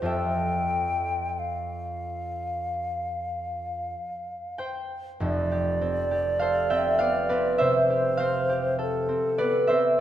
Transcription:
Already playing: G2 G4 A#4 D5
0.02 F2 C4 F4 A4 E5
0.06 G5
1.39 F5
4.58 C5 G5
5.20 F1 F2 D5
5.52 G4
5.81 C4
6.11 G4
6.39 A4 C5 F5
6.70 C4 E5 G5
6.99 B3 D5 F5
7.29 C4 B4 D5
7.58 C3 C5 E5
7.90 G4
8.17 C4 C5 F5
8.49 G4
8.79 A4
9.09 C4
9.38 B3 B4 D5
9.67 C4 C5 E5

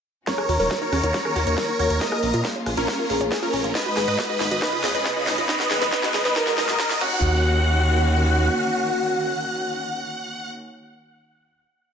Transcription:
0.27 D#3 A#3 C#4 F#4 A#4 C#5, kick, snare, closed hi-hat, riser
0.38 D#4, cross-stick
0.49 D#2 F#4, open hi-hat
0.60 D#1 A#4 C#5, open hi-hat
0.71 F#4, kick, snare, closed hi-hat
0.82 D#4 A#4 C#5
0.93 D#2 C#4, cross-stick, open hi-hat
1.03 D#2 D#4 A#4 C#5, closed hi-hat
1.14 F#4, kick, snare, closed hi-hat
1.25 A#4, cross-stick
1.36 D#2 F#4, open hi-hat
1.47 D#2 D#4 A#4 C#5, closed hi-hat
1.58 C#4 A#4, kick, snare, closed hi-hat
1.69 D#4
1.79 D#2 F#4 A#4 C#5, open hi-hat
1.90 D#2 A#4, closed hi-hat
2.01 C#4 F4 A#4 D#5, kick, snare, closed hi-hat
2.12 F4, cross-stick
2.23 A#1 C#4, open hi-hat
2.34 A#2 F4, closed hi-hat
2.45 A#4, kick, snare, closed hi-hat
2.56 C#5
2.66 A#1 A#4, cross-stick, open hi-hat
2.77 A#1 C#4 F4 A#4, closed hi-hat
2.88 C#4, kick, snare, closed hi-hat
2.99 F4
3.10 A#1 G#4 A#4, open hi-hat
3.21 A#1 C#5, closed hi-hat
3.32 A#4, kick, snare, closed hi-hat
3.43 C#4 F4 A#4
3.53 A#1 C#4, open hi-hat
3.64 A#1 F4, closed hi-hat
3.75 G#3 D#4 F#4 B4 D#5, kick, snare, closed hi-hat
3.86 F#4
3.97 G#1 G#4, snare, open hi-hat
4.08 G#2 B4 D#5, open hi-hat
4.19 G#4, kick, snare, closed hi-hat
4.29 F#4 B4 D#5
4.40 G#1 D#4, snare, open hi-hat
4.51 G#1 F#4 B4 D#5, closed hi-hat
4.62 C#3 C#4 D#4 F4 G#4 B4 D#5, kick, snare, closed hi-hat
4.73 F4
4.84 C#2 G#4, snare, open hi-hat
4.95 C#2 B4 D#5, closed hi-hat
5.06 G#4, kick, snare, closed hi-hat
5.16 F4 B4 D#5
5.27 C#2 D#4, snare, open hi-hat
5.38 C#2 F4 B4 D#5, closed hi-hat
5.49 D#3 B3 D#4 B4 D#5, kick, snare, closed hi-hat
5.60 F#4, snare
5.71 B1 G#4, snare, open hi-hat
5.82 F#1 B4 D#5, snare, closed hi-hat
5.92 D#4 B4 D#5, kick, snare, closed hi-hat
6.03 F#4, snare
6.14 B1 G#4, snare, open hi-hat
6.25 B1 B4 D#5, snare, closed hi-hat
6.36 F#3 G#3 D#4 A#4 D#5, kick, snare, closed hi-hat
6.47 F#4, snare
6.58 A#1 D#4 A#4 D#5, snare, open hi-hat
6.69 A#2 F#4, snare, closed hi-hat
6.79 D#4 A#4 D#5, kick, snare, closed hi-hat
6.90 F#4, snare
7.01 D#2 D#3 A#3 C#4 F#4 F#5, kick, crash

